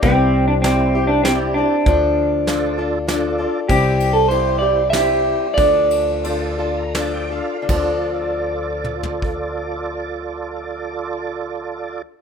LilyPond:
<<
  \new Staff \with { instrumentName = "Tonewheel organ" } { \time 3/4 \key d \minor \tempo 4 = 92 << { r2. | r2. | r2. | r4. a''16 bes''16 a''16 g''16 f''8 |
r2. | r2. | } \\ { r4 <e' g' c''>4 <e' g' d''>4 | r4 <f' a' d''>4 <f' a' d''>4 | r4 <e' g' c''>4 <e' g' c''>4 | r4 <f' a' d''>4 <f' a' d''>4 |
<f' a' d''>2.~ | <f' a' d''>2. | } >> }
  \new Staff \with { instrumentName = "Clean electric guitar" } { \time 3/4 \key d \minor c'8. d'16 c'8. d'16 c'8 d'8~ | d'2 r4 | g'8. a'16 c''8 d''8 e''4 | d''2 r4 |
r2. | r2. | }
  \new Staff \with { instrumentName = "Steel-string acoustic guitar" } { \time 3/4 \key d \minor <c g c' e' g'>4 <g c' e' g'>8 <c' e' g'>8 <g c' e' g'>8 <c' e' g'>8 | <d f d' f' a'>4 <f d' f' a'>8 <d' f' a'>8 <f d' f' a'>8 <d' f' a'>8 | <c g c' e' g'>4 <g c' e' g'>8 <c' e' g'>8 <g c' e' g'>4 | <d f d' f' a'>4 <f d' f' a'>8 <d' f' a'>8 <f d' f' a'>8 <d' f' a'>8 |
<d f d' f' a'>2.~ | <d f d' f' a'>2. | }
  \new Staff \with { instrumentName = "Upright bass" } { \clef bass \time 3/4 \key d \minor c,2. | d,2. | c,2. | d,2. |
d,2.~ | d,2. | }
  \new DrumStaff \with { instrumentName = "Drums" } \drummode { \time 3/4 <hh bd>4 <hh sn>4 <hh sn>4 | <hh bd>4 <hh sn>4 <hh sn>4 | <bd cymr>8 cymr8 cymr4 <cymr sn>4 | <bd cymr>8 cymr8 cymr4 <cymr sn>4 |
<cymc bd>4 r8 toml16 tomfh16 bd4 | r4 r4 r4 | }
>>